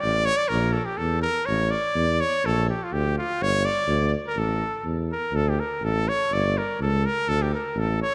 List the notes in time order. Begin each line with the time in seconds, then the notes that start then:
0.01 A1 D5
0.25 C#5
0.37 D5
0.48 A#1 A#4
0.73 A4
0.85 G4
0.97 E2 A4
1.22 A#4
1.46 A1 C#5
1.71 D5
1.94 E2
2.20 C#5
2.44 A#1 A4
2.70 G4
2.83 F4
2.93 D2 G4
3.18 F4
3.41 G1 C#5
3.65 D5
3.87 D2
4.27 A#4
4.36 A1 A4
4.84 E2
5.12 A#4
5.32 D2 A4
5.49 G4
5.60 A#4
5.82 A1 A4
6.08 C#5
6.32 G1 D5
6.58 A#4
6.80 C#2 A4
7.06 A#4
7.28 D2 A4
7.42 G4
7.54 A#4
7.75 A1
7.79 A4
8.02 C#5